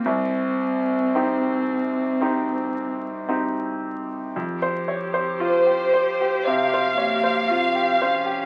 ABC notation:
X:1
M:4/4
L:1/16
Q:1/4=56
K:Cphr
V:1 name="Violin section"
z16 | z4 c4 f8 |]
V:2 name="Grand piano"
C,,4 [CEG]4 [CEG]4 [CEG]4 | F,, c d c F G c G C, c d c F G c G |]
V:3 name="Viola"
z16 | G16 |]
V:4 name="Cello"
C12 z4 | z8 C2 B,2 C2 D2 |]